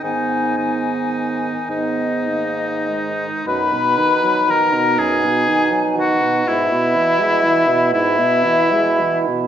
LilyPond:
<<
  \new Staff \with { instrumentName = "Flute" } { \time 6/8 \key gis \minor \tempo 4. = 38 gis''4. dis''4. | \key b \major b''4 ais''8 gis''4 fis''8 | e''4. e''4 r8 | }
  \new Staff \with { instrumentName = "Oboe" } { \time 6/8 \key gis \minor dis'8 dis'4 dis'4. | \key b \major b'4 ais'8 gis'4 fis'8 | e'4. e'4 r8 | }
  \new Staff \with { instrumentName = "Clarinet" } { \time 6/8 \key gis \minor b8 b4 b8 ais8 gis8 | \key b \major dis'2. | e'2. | }
  \new Staff \with { instrumentName = "French horn" } { \clef bass \time 6/8 \key gis \minor dis8 dis4. dis4 | \key b \major fis,16 b,16 dis16 fis16 dis16 b,16 fis,16 b,16 dis16 fis16 dis16 b,16 | gis,16 b,16 e16 gis16 e16 b,16 gis,16 b,16 e16 gis16 e16 b,16 | }
  \new Staff \with { instrumentName = "Bassoon" } { \clef bass \time 6/8 \key gis \minor gis,4. gis,4. | \key b \major b,2.~ | b,2. | }
>>